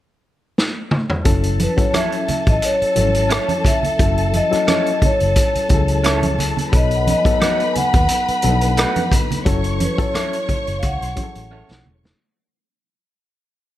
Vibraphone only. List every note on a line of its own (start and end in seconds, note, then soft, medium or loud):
1.63 1.80 B4 medium
1.80 1.87 C#5 medium
1.96 2.44 E5 medium
2.49 2.64 D#5 medium
2.65 3.69 C#5 medium
3.67 4.36 E5 medium
4.36 5.05 D#5 medium
5.05 6.36 C#5 medium
6.76 7.09 D#5 medium
7.10 7.69 D#5 medium
7.73 7.76 G#5 medium
7.77 7.95 F#5 medium
7.96 9.09 F#5 medium
9.83 10.01 B4 medium
10.02 10.80 C#5 medium
10.79 10.84 F5 medium
10.85 11.82 F#5 medium